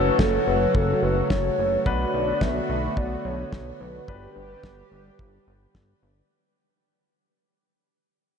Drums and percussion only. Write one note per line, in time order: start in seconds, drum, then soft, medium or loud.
0.19 kick loud
0.19 snare loud
0.75 kick loud
1.30 kick loud
1.30 snare loud
1.86 kick loud
2.41 kick loud
2.41 snare loud
2.97 kick loud
3.53 kick loud
3.53 snare loud
4.08 kick loud
4.64 kick loud
4.64 snare loud
5.19 kick loud
5.75 kick loud
5.75 snare loud